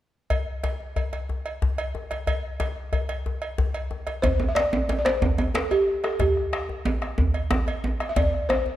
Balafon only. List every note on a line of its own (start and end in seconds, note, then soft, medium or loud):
4.22 4.50 C5 medium
4.48 4.56 E5 medium
4.55 4.97 D5 medium
4.99 5.06 D5 medium
5.05 5.56 C5 medium
5.54 5.62 A4 medium
5.71 6.05 G4 medium
6.04 6.21 A4 medium
6.21 7.15 G4 medium
8.09 8.17 E5 medium
8.17 8.47 D5 medium
8.49 8.76 C5 medium